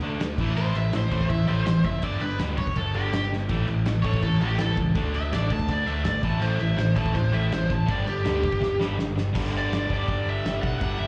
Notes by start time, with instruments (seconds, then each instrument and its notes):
0.00 picked electric bass D2, distorted electric guitar D3 A3 D4, crash
0.20 picked electric bass D2, distorted electric guitar D3 A3, snare, crash
0.38 picked electric bass A1, distorted electric guitar A2 E3 A3, kick, crash
0.56 picked electric bass A1, distorted electric guitar A2 E3 A3, overdriven electric guitar C5, crash
0.75 picked electric bass A1, distorted electric guitar A2 E3, overdriven electric guitar E5, crash
0.93 picked electric bass A1, distorted electric guitar A2 E3, snare, crash
0.97 overdriven electric guitar C5
1.11 picked electric bass A1, distorted electric guitar A2 E3 A3, overdriven electric guitar C5, kick, crash
1.21 kick
1.29 picked electric bass A1, distorted electric guitar A2 E3, overdriven electric guitar E5, kick, crash
1.47 picked electric bass A1, distorted electric guitar A2 E3 A3, overdriven electric guitar C5, crash
1.65 picked electric bass A1, distorted electric guitar A2 E3, overdriven electric guitar C5, snare, crash
1.84 picked electric bass F#1, distorted electric guitar A2 E3, overdriven electric guitar E5, kick, crash
2.02 picked electric bass G1, distorted electric guitar G2 D3 G3, overdriven electric guitar D5, kick, crash
2.21 picked electric bass G1, distorted electric guitar G2 D3, overdriven electric guitar B4, crash
2.39 picked electric bass D2, distorted electric guitar G2 D3 G3, snare, crash
2.57 picked electric bass G1, distorted electric guitar G2 D3, overdriven electric guitar C#5, kick, crash
2.67 kick
2.75 picked electric bass G1, distorted electric guitar G2 D3, overdriven electric guitar A4, kick, crash
2.94 picked electric bass G1, distorted electric guitar G2 D3 G3, overdriven electric guitar G4, crash
3.13 picked electric bass G1, distorted electric guitar G2 D3, overdriven electric guitar G4, snare, crash
3.32 distorted electric guitar G2 D3, snare
3.49 picked electric bass A1, distorted electric guitar A2 E3 A3, kick, crash
3.67 picked electric bass A1, distorted electric guitar A2 E3, crash
3.85 picked electric bass A1, distorted electric guitar A2 E3, snare, crash
4.03 picked electric bass A1, distorted electric guitar A2 E3 A3, overdriven electric guitar C#5, kick, crash
4.14 kick
4.22 picked electric bass A1, distorted electric guitar A2 E3, overdriven electric guitar A4, kick, crash
4.40 picked electric bass A1, distorted electric guitar A2 E3 A3, overdriven electric guitar G4, crash
4.58 picked electric bass A1, distorted electric guitar A2 E3, overdriven electric guitar A4, snare, crash
4.77 picked electric bass C#2, distorted electric guitar A2 E3, kick, crash
4.95 picked electric bass D2, distorted electric guitar D3 A3 D4, kick, crash
5.13 picked electric bass D2, distorted electric guitar D3 A3, overdriven electric guitar E5, crash
5.32 picked electric bass A1, distorted electric guitar D3 A3 D4, overdriven electric guitar D5, snare, crash
5.50 picked electric bass D2, distorted electric guitar D3 A3, overdriven electric guitar A5, kick, crash
5.59 kick
5.68 picked electric bass D2, distorted electric guitar D3 A3, overdriven electric guitar D5, kick, crash
5.86 picked electric bass D2, distorted electric guitar D3 A3 D4, overdriven electric guitar E5, crash
6.04 picked electric bass G#1, distorted electric guitar D3 A3, overdriven electric guitar D5, snare, crash
6.23 picked electric bass A1, distorted electric guitar A2 E3 A3, overdriven electric guitar A5, kick, crash
6.40 picked electric bass A1, distorted electric guitar A2 E3 A3, overdriven electric guitar C5, crash
6.60 picked electric bass A1, distorted electric guitar A2 E3, overdriven electric guitar E5, crash
6.77 picked electric bass A1, distorted electric guitar A2 E3, overdriven electric guitar C5, snare, crash
6.96 picked electric bass A1, distorted electric guitar A2 E3 A3, overdriven electric guitar A5, kick, crash
7.06 kick
7.14 picked electric bass A1, distorted electric guitar A2 E3, overdriven electric guitar C5, kick, crash
7.32 picked electric bass A1, distorted electric guitar A2 E3 A3, overdriven electric guitar E5, crash
7.50 picked electric bass A1, distorted electric guitar A2 E3, overdriven electric guitar C5, snare, crash
7.70 picked electric bass A1, distorted electric guitar A2 E3, overdriven electric guitar A5, kick, crash
7.86 picked electric bass G1, distorted electric guitar G2 D3 G3, overdriven electric guitar D5, kick, crash
8.06 picked electric bass G1, distorted electric guitar G2 D3, overdriven electric guitar G4, crash
8.24 picked electric bass D2, distorted electric guitar G2 D3 G3, snare, crash
8.42 picked electric bass G1, distorted electric guitar G2 D3, kick, crash
8.52 kick
8.60 picked electric bass G1, distorted electric guitar G2 D3, kick, snare
8.79 picked electric bass G1, distorted electric guitar G2 D3 G3, snare
8.97 picked electric bass G1, distorted electric guitar G2 D3, snare
9.15 distorted electric guitar G2 D3, snare
9.33 picked electric bass G1, distorted electric guitar G2 D3 G3, kick, crash
9.54 picked electric bass G1
9.58 overdriven electric guitar D5
9.72 picked electric bass G1, snare, crash
9.89 picked electric bass G1, distorted electric guitar G2 D3 G3, kick
9.93 overdriven electric guitar D5
10.08 picked electric bass G1, kick, crash
10.26 picked electric bass G1, overdriven electric guitar E5
10.45 picked electric bass G1, snare, crash
10.62 picked electric bass B1, overdriven electric guitar F#5, kick
10.79 picked electric bass G1, distorted electric guitar G2 D3, overdriven electric guitar F#5, kick, crash
10.83 distorted electric guitar G3
10.99 picked electric bass G1, overdriven electric guitar E5